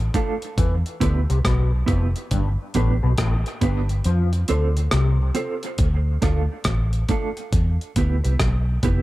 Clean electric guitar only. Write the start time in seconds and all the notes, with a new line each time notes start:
0.15 A3 D4 F4 A4
1.00 B3 E4 G4 B4
1.86 B3 E4 G4 B4
2.75 B3 D4 G4 B4
3.47 muted clean electric guitar stroke
3.61 B3 D4 G4 B4
4.49 C4 F4 A4 C5
5.35 C4 F4 A4 C5
6.22 A3 D4 F4 A4
7.09 A3 D4 F4 A4
7.96 B3 E4 G4 B4
8.24 B3 E4 G4 B4
8.83 B3 E4 G4 B4